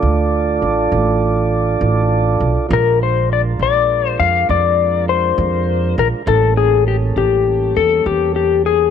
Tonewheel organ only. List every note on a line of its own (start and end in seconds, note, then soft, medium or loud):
0.00 2.67 D4 medium
0.00 2.67 F4 medium
0.00 2.67 A4 medium
0.00 2.67 D5 medium
2.69 6.22 G#3 medium
2.69 6.23 D4 medium
2.69 6.22 F4 medium
2.69 6.23 A#4 medium
6.26 8.90 G3 medium
6.26 8.90 A#3 medium
6.26 8.90 C#4 medium
6.26 8.90 A4 medium